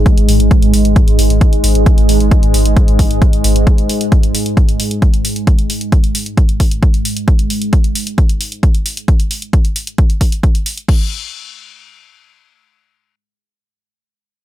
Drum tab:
CC |----------------|----------------|----------------|----------------|
HH |xxoxxxoxxxoxxxox|xxoxxxoxxxoxxxox|xxoxxxoxxxoxxxox|xxoxxxoxxxoxxxox|
BD |o---o---o---o---|o---o---o-o-o---|o---o---o---o---|o---o---o-o-o---|

CC |----------------|----------------|x---------------|----------------|
HH |xxoxxxoxxxoxxxox|xxoxxxoxxxoxxxox|----------------|----------------|
BD |o---o---o---o---|o---o---o-o-o---|o---------------|----------------|